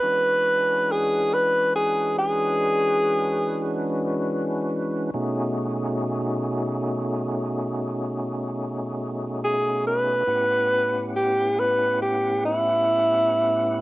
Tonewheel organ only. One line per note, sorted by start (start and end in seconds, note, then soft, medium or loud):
0.02 5.11 E3 medium
0.02 5.11 G#3 medium
0.02 5.10 C#4 medium
0.02 5.11 D4 medium
0.02 5.11 F#4 medium
0.02 5.11 B4 medium
5.14 10.24 B2 medium
5.14 10.24 A3 medium
5.14 10.24 C#4 medium
5.14 10.24 D#4 medium
5.14 10.24 F#4 medium
5.14 10.24 G#4 medium
10.27 13.81 A2 medium
10.27 13.81 B3 medium
10.27 13.81 C#4 medium
10.27 13.81 E4 medium
10.27 13.81 G4 medium
10.27 13.81 F#5 medium